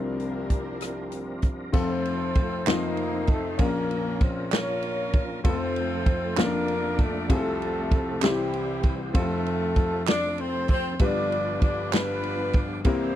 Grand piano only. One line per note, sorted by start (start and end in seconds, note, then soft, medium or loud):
0.00 1.70 C2 soft
0.00 1.70 C3 soft
0.00 1.70 G3 soft
0.00 1.70 C4 soft
0.00 1.70 D4 soft
0.00 1.71 F4 soft
0.00 1.71 A#4 medium
1.72 2.63 F1 medium
1.72 2.63 F2 medium
1.72 2.66 C4 medium
1.72 2.66 F4 medium
1.72 2.67 A4 medium
2.67 3.56 F1 medium
2.67 3.56 F2 medium
2.67 3.59 F3 medium
2.67 3.60 C4 medium
2.67 3.60 D#4 medium
2.67 3.57 F4 medium
2.67 3.60 C5 medium
3.58 5.40 A#1 medium
3.58 5.40 A#2 medium
3.58 5.40 C#4 medium
3.58 5.41 F4 medium
3.58 5.41 A#4 medium
5.44 6.33 F1 medium
5.44 6.33 F2 medium
5.44 6.37 C4 medium
5.44 6.36 F4 medium
5.44 6.37 A4 medium
6.37 7.26 F1 medium
6.37 7.26 F2 medium
6.37 7.30 A#3 medium
6.37 6.43 C#4 medium
6.37 7.28 F4 medium
6.43 7.33 D4 medium
7.29 8.18 C2 medium
7.29 8.18 C3 medium
7.29 8.21 C4 medium
7.29 8.22 F4 medium
7.29 7.36 G#4 medium
7.37 8.26 A4 medium
8.22 9.11 C2 medium
8.22 9.11 C3 medium
8.22 9.12 C4 medium
8.22 9.15 E4 soft
8.22 9.16 G4 medium
9.14 10.96 F1 medium
9.14 10.96 F2 medium
9.14 10.96 C4 medium
9.14 10.96 F4 medium
9.14 10.97 A4 medium
10.99 12.81 G1 medium
10.99 12.82 G2 medium
10.99 12.81 G3 medium
10.99 12.82 B3 medium
10.99 12.82 D4 medium
10.99 12.82 F4 medium
10.99 12.82 B4 medium
12.84 13.15 C2 medium
12.84 13.15 C3 medium
12.84 13.15 G3 medium
12.84 13.15 A#3 medium
12.84 13.15 C4 medium
12.84 13.15 E4 medium
12.84 13.15 A#4 medium